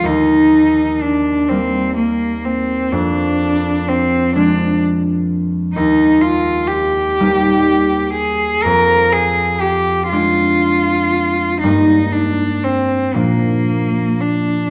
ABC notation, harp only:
X:1
M:6/8
L:1/8
Q:3/8=41
K:Eb
V:1 name="Harp" clef=bass
E,,3 [G,B,]3 | F,,3 [F,A,D]3 | E,,3 [G,B,E]3 | F,,3 [A,D]3 |
[G,,G,B,E]3 [B,,F,B,D]3 |]